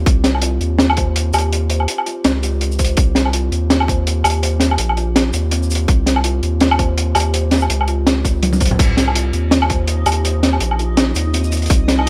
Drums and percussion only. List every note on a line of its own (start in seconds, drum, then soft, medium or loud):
0.06 kick loud
0.06 closed hi-hat medium
0.24 snare medium
0.24 closed hi-hat medium
0.35 low woodblock soft
0.42 closed hi-hat medium
0.61 closed hi-hat soft
0.79 snare loud
0.79 closed hi-hat medium
0.90 low woodblock medium
0.97 kick medium
0.97 closed hi-hat medium
1.16 closed hi-hat loud
1.33 closed hi-hat medium
1.33 low woodblock medium
1.33 shaker medium
1.38 closed hi-hat medium
1.53 closed hi-hat medium
1.70 closed hi-hat medium
1.80 low woodblock medium
1.88 closed hi-hat medium
1.98 low woodblock medium
2.06 closed hi-hat medium
2.24 snare loud
2.24 closed hi-hat medium
2.43 closed hi-hat medium
2.43 shaker medium
2.61 closed hi-hat medium
2.71 shaker medium
2.79 kick medium
2.79 closed hi-hat medium
2.79 shaker medium
2.85 closed hi-hat medium
2.97 kick loud
2.97 closed hi-hat medium
3.15 snare medium
3.15 closed hi-hat medium
3.25 low woodblock soft
3.33 closed hi-hat medium
3.52 closed hi-hat medium
3.70 snare loud
3.70 closed hi-hat medium
3.80 low woodblock medium
3.88 kick medium
3.88 closed hi-hat medium
4.07 closed hi-hat medium
4.24 closed hi-hat medium
4.24 low woodblock medium
4.24 shaker medium
4.30 closed hi-hat medium
4.43 closed hi-hat medium
4.60 snare medium
4.60 closed hi-hat medium
4.71 low woodblock medium
4.78 closed hi-hat medium
4.89 low woodblock medium
4.97 closed hi-hat soft
5.16 snare loud
5.16 closed hi-hat medium
5.33 closed hi-hat medium
5.33 shaker medium
5.51 closed hi-hat medium
5.63 shaker medium
5.70 closed hi-hat medium
5.70 shaker medium
5.75 closed hi-hat medium
5.88 kick loud
5.88 closed hi-hat medium
6.06 snare medium
6.06 closed hi-hat medium
6.16 low woodblock medium
6.24 closed hi-hat medium
6.43 closed hi-hat soft
6.60 snare loud
6.60 closed hi-hat medium
6.71 low woodblock medium
6.79 kick medium
6.79 closed hi-hat medium
6.98 closed hi-hat medium
7.15 closed hi-hat medium
7.15 low woodblock medium
7.15 shaker medium
7.20 closed hi-hat medium
7.34 closed hi-hat medium
7.51 snare medium
7.51 closed hi-hat medium
7.51 shaker soft
7.55 shaker soft
7.57 shaker soft
7.60 low woodblock medium
7.60 shaker soft
7.70 closed hi-hat loud
7.81 low woodblock medium
7.88 closed hi-hat medium
8.07 snare loud
8.07 closed hi-hat medium
8.25 kick medium
8.25 closed hi-hat medium
8.25 shaker medium
8.43 closed hi-hat medium
8.43 high tom medium
8.53 high tom medium
8.53 shaker medium
8.60 kick medium
8.60 closed hi-hat medium
8.60 shaker medium
8.65 closed hi-hat medium
8.71 mid tom medium
8.79 kick loud
8.79 closed hi-hat medium
8.79 crash medium
8.97 snare medium
8.97 closed hi-hat medium
9.08 low woodblock medium
9.15 closed hi-hat loud
9.33 closed hi-hat medium
9.51 snare loud
9.51 closed hi-hat loud
9.62 low woodblock medium
9.70 kick medium
9.70 closed hi-hat medium
9.87 closed hi-hat medium
10.06 closed hi-hat medium
10.06 low woodblock medium
10.06 shaker medium
10.12 closed hi-hat medium
10.25 closed hi-hat loud
10.43 snare medium
10.43 closed hi-hat medium
10.53 low woodblock medium
10.60 closed hi-hat loud
10.71 low woodblock medium
10.79 closed hi-hat medium
10.97 snare loud
10.97 closed hi-hat loud
11.15 closed hi-hat medium
11.15 shaker medium
11.34 closed hi-hat medium
11.44 shaker soft
11.52 closed hi-hat medium
11.52 shaker medium
11.57 closed hi-hat soft
11.62 closed hi-hat soft
11.66 closed hi-hat medium
11.70 kick loud
11.70 closed hi-hat medium
11.88 snare medium
11.88 closed hi-hat medium
11.99 low woodblock medium